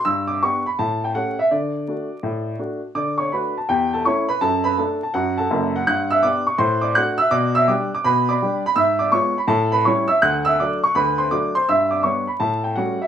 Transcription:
0.05 0.36 G2 medium
0.05 0.28 E6 loud
0.27 0.41 D6 medium
0.43 0.62 B3 soft
0.43 0.63 D4 soft
0.43 0.63 G4 soft
0.43 0.66 C#6 medium
0.66 0.78 B5 medium
0.79 1.09 A2 medium
0.79 1.02 A5 medium
1.04 1.15 G5 medium
1.15 1.35 A3 soft
1.15 1.35 C#4 soft
1.15 1.35 G4 soft
1.15 1.39 F#5 medium
1.39 1.51 E5 medium
1.51 1.82 D3 medium
1.51 2.60 D5 medium
1.88 2.07 A3 soft
1.88 2.08 D4 soft
1.88 2.08 F#4 soft
2.23 2.54 A2 medium
2.59 2.79 A3 soft
2.59 2.79 D4 soft
2.59 2.79 F#4 soft
2.95 3.26 D3 medium
2.95 3.18 D5 medium
2.95 3.18 D6 medium
3.18 3.31 C#5 medium
3.18 3.31 C#6 medium
3.32 3.52 A3 soft
3.32 3.53 D4 soft
3.32 3.53 F#4 soft
3.32 3.55 B4 medium
3.32 3.56 B5 medium
3.58 3.69 A5 medium
3.69 4.00 E2 medium
3.69 3.91 G4 medium
3.69 3.92 G5 medium
3.93 4.05 A4 medium
3.93 4.06 A5 medium
4.05 4.25 A3 soft
4.05 4.26 C#4 soft
4.05 4.26 E4 medium
4.05 4.27 C#5 medium
4.05 4.28 C#6 medium
4.29 4.41 B4 medium
4.29 4.41 B5 medium
4.41 4.72 F#2 medium
4.41 4.63 A4 medium
4.41 4.64 A5 loud
4.64 4.77 B4 medium
4.64 4.77 B5 loud
4.78 4.98 A3 soft
4.78 4.98 D4 soft
4.78 5.01 A4 medium
4.78 5.02 A5 medium
5.03 5.14 A5 medium
5.14 5.45 F#2 medium
5.14 5.37 F#4 medium
5.14 5.37 F#5 medium
5.37 5.72 A4 medium
5.37 5.72 F#5 medium
5.37 5.74 A5 medium
5.51 5.79 F#1 medium
5.51 5.79 F#2 medium
5.76 5.87 F#5 medium
5.87 6.18 G2 medium
5.87 6.09 F#5 medium
5.87 6.10 F#6 loud
6.10 6.23 E5 medium
6.10 6.23 E6 loud
6.23 6.43 B3 soft
6.23 6.44 D4 soft
6.23 6.44 G4 soft
6.23 6.46 D5 medium
6.23 6.47 D6 loud
6.47 6.59 C#6 medium
6.58 6.90 A2 medium
6.58 6.81 C5 medium
6.58 6.82 C6 loud
6.81 6.95 D5 medium
6.81 6.95 D6 medium
6.95 7.16 A3 soft
6.95 7.16 D4 soft
6.95 7.16 F#4 medium
6.95 7.17 F#5 medium
6.95 7.18 F#6 loud
7.18 7.31 E5 medium
7.18 7.31 E6 loud
7.31 7.62 B2 medium
7.31 7.53 D5 medium
7.31 7.54 D6 loud
7.55 7.68 E5 medium
7.55 7.68 E6 loud
7.68 7.88 G3 soft
7.68 7.88 D4 soft
7.68 7.89 G4 medium
7.68 7.91 D5 medium
7.68 7.92 D6 medium
7.95 8.05 D6 medium
8.04 8.35 B2 medium
8.04 8.28 B4 medium
8.04 8.29 B5 loud
8.29 8.63 D5 medium
8.29 8.63 B5 medium
8.29 8.65 D6 medium
8.42 8.62 G3 medium
8.42 8.62 D4 medium
8.42 8.62 G4 medium
8.66 8.78 B5 loud
8.76 9.07 G#2 medium
8.76 8.99 E5 medium
8.76 8.99 E6 loud
8.99 9.13 D5 medium
8.99 9.13 D6 medium
9.12 9.33 G#3 soft
9.12 9.33 B3 medium
9.12 9.33 F4 medium
9.12 9.36 C#5 medium
9.12 9.37 C#6 loud
9.38 9.50 B5 medium
9.48 9.79 A2 loud
9.48 9.71 A4 medium
9.48 9.72 A5 loud
9.72 9.85 B4 medium
9.72 9.86 B5 medium
9.85 10.06 G3 medium
9.85 10.06 C#4 soft
9.85 10.06 E4 medium
9.85 10.08 C#5 medium
9.85 10.09 C#6 medium
10.08 10.21 E5 medium
10.08 10.22 E6 loud
10.22 10.53 D2 medium
10.22 10.44 F#5 medium
10.22 10.45 F#6 loud
10.45 10.58 E5 medium
10.45 10.58 E6 loud
10.60 10.80 F#3 soft
10.60 10.80 A3 soft
10.60 10.80 D4 soft
10.60 10.82 D5 medium
10.60 10.83 D6 medium
10.84 10.95 C#6 medium
10.95 11.26 D2 medium
10.95 11.17 B4 medium
10.95 11.18 B5 loud
11.18 11.31 C5 medium
11.18 11.31 C6 medium
11.31 11.51 F#3 soft
11.31 11.51 A3 soft
11.31 11.51 D4 medium
11.31 11.53 D5 medium
11.31 11.54 D6 loud
11.55 11.67 C5 medium
11.55 11.68 C6 loud
11.69 11.99 G2 medium
11.69 11.90 E5 medium
11.69 11.91 E6 loud
11.91 12.03 D5 medium
11.91 12.04 D6 medium
12.03 12.23 G3 soft
12.03 12.24 B3 soft
12.03 12.24 D4 soft
12.03 12.27 C#5 medium
12.03 12.27 C#6 medium
12.27 12.39 B5 medium
12.40 12.71 A2 medium
12.40 12.63 A4 medium
12.40 12.64 A5 medium
12.64 12.76 G5 medium
12.75 12.96 G3 soft
12.75 12.97 A3 soft
12.75 12.97 C#4 medium
12.75 12.99 F#4 medium
12.75 13.00 F#5 medium
13.02 13.07 E5 medium

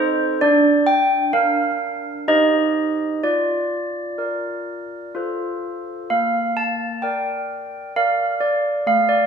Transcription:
0.00 0.37 C4 medium
0.00 0.38 D#4 medium
0.00 0.37 A4 medium
0.00 0.40 C5 loud
0.41 1.32 D4 medium
0.41 0.85 D5 loud
0.87 1.31 G5 loud
1.33 2.23 D4 medium
1.33 2.23 A#4 medium
1.33 2.24 F5 medium
2.28 3.21 D#4 medium
2.28 3.19 G4 soft
2.28 3.20 C5 soft
2.28 3.20 D#5 loud
3.24 5.11 F4 medium
3.24 4.18 D5 medium
4.18 5.10 A#4 soft
4.18 5.11 D5 soft
5.15 6.08 F4 medium
5.15 6.07 A4 soft
5.15 6.07 C5 soft
6.10 7.01 A#3 medium
6.10 6.55 F5 medium
6.57 7.01 A5 medium
7.02 7.91 A#4 soft
7.02 7.91 D5 soft
7.02 7.91 G5 medium
7.96 8.83 A#4 soft
7.96 8.39 D5 soft
7.96 8.40 F5 medium
8.41 8.85 D5 medium
8.87 9.27 A3 medium
8.87 9.10 F5 loud
9.09 9.27 D5 medium

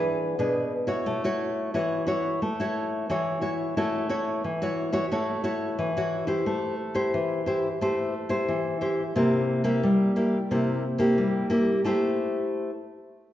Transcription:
0.00 0.36 E3 medium
0.00 0.34 D4 medium
0.00 0.34 G#4 medium
0.00 0.35 B4 medium
0.39 1.03 B2 medium
0.39 0.71 D4 medium
0.39 0.71 G#4 medium
0.39 0.71 B4 medium
0.87 1.23 E4 medium
0.87 1.23 F#4 medium
0.87 1.24 C#5 medium
1.06 1.71 A3 medium
1.24 1.69 E4 medium
1.24 1.69 F#4 medium
1.24 1.70 C#5 medium
1.74 2.38 E3 medium
1.74 2.03 E4 medium
1.74 2.03 F#4 medium
1.74 2.03 C#5 medium
2.07 2.39 E4 medium
2.07 2.39 F#4 medium
2.07 2.40 C#5 medium
2.42 3.06 A3 medium
2.60 3.04 E4 medium
2.60 3.05 F#4 medium
2.60 3.05 C#5 medium
3.10 3.74 E3 medium
3.10 3.38 E4 medium
3.10 3.38 F#4 medium
3.10 3.38 C#5 medium
3.41 3.74 E4 medium
3.41 3.74 F#4 medium
3.41 3.74 C#5 medium
3.77 4.41 A3 medium
3.77 4.05 E4 medium
3.77 4.05 F#4 medium
3.77 4.06 C#5 medium
4.09 4.42 E4 medium
4.09 4.42 F#4 medium
4.09 4.42 C#5 medium
4.44 5.08 E3 medium
4.62 4.90 E4 medium
4.62 4.90 F#4 medium
4.62 4.90 C#5 medium
4.92 5.05 E4 medium
4.92 5.05 F#4 medium
4.92 5.05 C#5 medium
5.12 5.76 A3 medium
5.12 5.40 E4 medium
5.12 5.40 F#4 medium
5.12 5.40 C#5 medium
5.44 5.90 E4 medium
5.44 5.90 F#4 medium
5.44 5.90 C#5 medium
5.79 6.43 E3 medium
5.97 6.25 E4 medium
5.97 6.25 F#4 medium
5.97 6.25 C#5 medium
6.27 6.73 E4 medium
6.27 6.74 G4 medium
6.27 6.74 C5 medium
6.46 7.10 A3 medium
6.94 7.41 E4 medium
6.94 7.41 G4 medium
6.94 7.41 C5 medium
7.14 7.78 E3 medium
7.46 7.67 E4 medium
7.46 7.67 G4 medium
7.46 7.67 C5 medium
7.81 8.45 A3 medium
7.81 8.13 E4 medium
7.81 8.13 G4 medium
7.81 8.13 C5 medium
8.29 8.76 E4 medium
8.29 8.76 G4 medium
8.29 8.76 C5 medium
8.49 9.13 E3 medium
8.81 9.02 E4 medium
8.81 9.02 G4 medium
8.81 9.02 C5 medium
9.16 9.80 C3 medium
9.16 9.61 A#3 medium
9.16 9.61 E4 medium
9.16 9.61 G4 medium
9.64 10.10 A#3 medium
9.64 10.11 E4 medium
9.64 10.11 G4 medium
9.83 10.47 G3 medium
10.16 10.36 A#3 medium
10.16 10.36 E4 medium
10.16 10.37 G4 medium
10.51 11.15 C3 medium
10.51 10.82 A#3 medium
10.51 10.83 E4 medium
10.51 10.83 G4 medium
10.98 11.45 A#3 medium
10.98 11.45 E4 medium
10.98 11.46 G4 medium
11.18 11.82 G3 medium
11.50 11.79 A#3 medium
11.50 11.80 E4 medium
11.50 11.80 G4 medium
11.84 12.70 A3 medium
11.84 12.70 E4 medium
11.84 12.70 G4 medium
11.84 12.70 C5 medium

